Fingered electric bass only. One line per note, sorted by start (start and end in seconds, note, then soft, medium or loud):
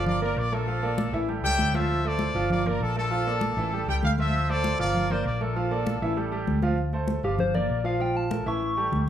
0.00 0.33 G1 loud
0.36 1.07 A#1 loud
1.12 1.41 A1 loud
1.43 1.58 C#2 medium
1.58 2.29 D2 medium
2.34 2.77 G1 loud
2.80 3.51 A#1 loud
3.57 3.85 A1 loud
3.88 4.02 C#2 medium
4.03 4.74 D2 loud
4.80 5.22 G1 loud
5.25 5.96 A#1 loud
6.02 6.44 A1 loud
6.48 7.19 D2 medium
7.23 7.66 G1 loud
7.69 8.41 A#1 loud
8.46 8.89 A1 medium
8.92 9.09 D2 loud